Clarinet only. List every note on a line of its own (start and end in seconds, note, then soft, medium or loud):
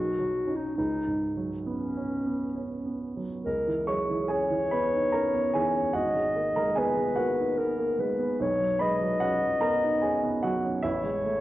0.00 0.57 F#4 medium
0.56 0.77 D#4 soft
0.78 1.35 D#4 medium
1.66 2.97 C#4 soft
3.44 3.89 A#4 soft
3.88 4.31 G#4 soft
4.29 5.95 C#5 medium
5.95 6.80 D#5 medium
6.78 7.60 B4 medium
7.59 8.02 A#4 soft
8.00 8.43 B4 soft
8.42 8.83 C#5 soft
8.81 10.56 D#5 medium
10.83 11.40 C#5 medium